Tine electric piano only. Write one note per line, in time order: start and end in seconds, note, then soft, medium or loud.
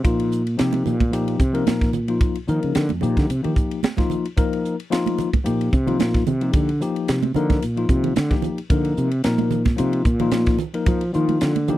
0.03 0.41 F3 medium
0.03 0.41 A#3 medium
0.03 0.41 D#4 medium
0.03 0.42 F4 medium
0.57 0.95 F3 medium
0.57 0.96 A#3 medium
0.57 0.96 D#4 medium
0.57 0.96 G4 medium
1.12 1.39 F3 medium
1.12 1.40 A#3 medium
1.12 1.40 D#4 medium
1.12 1.40 G4 medium
1.53 1.89 F3 medium
1.53 1.90 A#3 medium
1.53 1.90 D#4 medium
1.53 1.90 A#4 medium
2.08 2.36 F3 medium
2.08 2.36 A#3 medium
2.08 2.36 D#4 medium
2.08 2.36 F4 medium
2.47 2.85 F3 medium
2.47 2.85 A#3 medium
2.47 2.85 D#4 medium
2.47 2.86 A#4 medium
3.02 3.29 F3 medium
3.02 3.29 A#3 medium
3.02 3.30 D#4 medium
3.02 3.30 G4 medium
3.43 3.79 F3 medium
3.43 3.79 A#3 medium
3.43 3.79 D#4 medium
3.43 3.80 G4 medium
3.97 4.24 F3 medium
3.97 4.25 A#3 medium
3.97 4.25 D#4 medium
3.97 4.25 F4 medium
4.36 4.74 F3 medium
4.36 4.75 A#3 medium
4.36 4.75 D#4 medium
4.36 4.75 A#4 medium
4.90 5.28 F3 medium
4.90 5.28 A#3 medium
4.90 5.29 D#4 medium
4.90 5.29 F4 medium
5.44 5.72 F3 medium
5.44 5.72 A#3 medium
5.44 5.73 D#4 medium
5.44 5.73 G4 medium
5.86 6.22 F3 medium
5.86 6.23 A#3 medium
5.86 6.23 D#4 medium
5.86 6.23 F4 medium
6.41 6.69 F3 medium
6.41 6.69 A#3 medium
6.41 6.69 D#4 medium
6.41 6.70 G4 medium
6.80 7.18 F3 medium
6.80 7.18 A#3 medium
6.80 7.19 D#4 medium
6.80 7.19 G4 medium
7.35 7.62 F3 medium
7.35 7.63 A#3 medium
7.35 7.63 D#4 medium
7.35 7.63 A#4 medium
7.77 8.12 F3 medium
7.77 8.13 A#3 medium
7.77 8.13 D#4 medium
7.77 8.13 F4 medium
8.29 8.58 F3 medium
8.29 8.58 A#3 medium
8.29 8.58 D#4 medium
8.29 8.58 G4 medium
8.70 9.08 F3 medium
8.70 9.08 A#3 medium
8.70 9.08 D#4 medium
8.70 9.08 A#4 medium
9.24 9.62 F3 medium
9.24 9.62 A#3 medium
9.24 9.62 D#4 medium
9.24 9.62 A#4 medium
9.77 10.05 F3 medium
9.77 10.05 A#3 medium
9.77 10.06 D#4 medium
9.77 10.06 F4 medium
10.20 10.56 F3 medium
10.20 10.56 A#3 medium
10.20 10.56 D#4 medium
10.20 10.57 F4 medium
10.73 11.02 F3 medium
10.73 11.02 A#3 medium
10.73 11.02 D#4 medium
10.73 11.02 A#4 medium
11.13 11.51 F3 medium
11.13 11.51 A#3 medium
11.13 11.52 D#4 medium
11.13 11.52 F4 medium
11.68 11.78 F3 medium
11.68 11.78 A#3 medium
11.68 11.78 D#4 medium
11.68 11.78 G4 medium